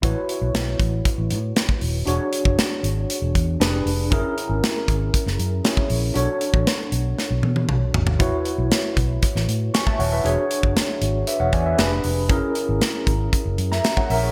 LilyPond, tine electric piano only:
\new Staff \with { instrumentName = "Tine electric piano" } { \time 4/4 \key a \major \tempo 4 = 117 << { r1 | r1 | r1 | r1 |
r2. <gis'' cis'''>16 <e'' a''>16 <cis'' fis''>16 <b' e''>16~ | <b' e''>16 r4. r16 <b' e''>16 <cis'' fis''>16 <d'' gis''>16 <b' e''>8 r8. | r2 r8. <e'' ais''>8 <cis'' fis''>16 <ais' e''>16 <gis' cis''>16 | } \\ { <e' fis' b' cis''>1 | <d' fis' gis' cis''>2. <d' g' aes' ces''>4 | <cis' e' gis' ais'>2. <cis' e' gis' cis''>4 | <d' fis' a' cis''>1 |
<e' fis' b' cis''>1 | <d' fis' gis' cis''>2. <d' g' aes' ces''>4 | <cis' e' gis' ais'>1 | } >> }